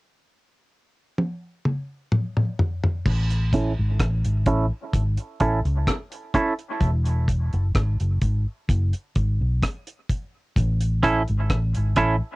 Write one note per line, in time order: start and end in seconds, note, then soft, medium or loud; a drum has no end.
1.18 high tom medium
1.65 mid tom medium
2.12 mid tom medium
2.37 mid tom medium
2.59 floor tom loud
2.84 floor tom medium
3.06 3.74 A1 loud
3.06 kick loud
3.06 crash medium
3.30 closed hi-hat medium
3.53 3.71 C#4 medium
3.53 3.72 E4 medium
3.53 3.72 A4 medium
3.53 kick medium
3.53 closed hi-hat medium
3.79 3.99 G#1 medium
4.00 4.22 A1 loud
4.00 kick loud
4.00 cross-stick loud
4.00 closed hi-hat medium
4.25 4.45 G#1 medium
4.25 closed hi-hat medium
4.46 4.69 A1 medium
4.46 4.65 C#4 medium
4.46 4.65 E4 medium
4.46 4.65 A4 loud
4.46 kick medium
4.46 closed hi-hat medium
4.93 5.16 G#1 medium
4.93 kick loud
4.93 closed hi-hat medium
5.17 closed hi-hat soft
5.40 5.63 A1 medium
5.40 5.59 C#4 medium
5.40 5.59 E4 medium
5.40 5.59 A4 medium
5.40 kick medium
5.40 closed hi-hat medium
5.65 5.85 C#2 medium
5.65 closed hi-hat soft
5.87 kick loud
5.87 cross-stick loud
5.87 closed hi-hat medium
6.12 closed hi-hat medium
6.34 6.53 C#4 medium
6.34 6.53 E4 loud
6.34 6.53 A4 medium
6.34 kick medium
6.34 closed hi-hat medium
6.59 closed hi-hat soft
6.81 7.49 E1 loud
6.81 kick loud
6.81 closed hi-hat medium
7.05 closed hi-hat medium
7.28 kick medium
7.28 closed hi-hat medium
7.53 7.73 F#1 medium
7.53 closed hi-hat soft
7.75 7.97 G#1 medium
7.75 kick loud
7.75 cross-stick loud
7.75 closed hi-hat medium
8.00 8.20 F#1 medium
8.00 closed hi-hat medium
8.21 8.44 G#1 medium
8.21 kick medium
8.21 closed hi-hat medium
8.69 8.91 F#1 loud
8.69 kick loud
8.69 closed hi-hat medium
8.93 closed hi-hat soft
9.15 9.38 G#1 medium
9.15 kick medium
9.15 closed hi-hat medium
9.41 9.61 B1 medium
9.63 kick loud
9.63 cross-stick loud
9.63 closed hi-hat medium
9.87 closed hi-hat medium
10.09 kick medium
10.09 closed hi-hat medium
10.56 11.24 A1 loud
10.56 kick loud
10.56 closed hi-hat medium
10.81 closed hi-hat medium
11.03 11.21 C#4 medium
11.03 11.21 E4 loud
11.03 11.22 A4 medium
11.03 kick medium
11.03 closed hi-hat medium
11.28 11.49 G#1 medium
11.28 closed hi-hat soft
11.50 11.73 A1 loud
11.50 kick loud
11.50 cross-stick loud
11.50 closed hi-hat medium
11.75 11.96 G#1 medium
11.75 closed hi-hat medium
11.96 12.19 A1 medium
11.96 12.15 C#4 medium
11.96 12.15 E4 medium
11.96 12.16 A4 medium
11.96 kick medium
11.96 closed hi-hat medium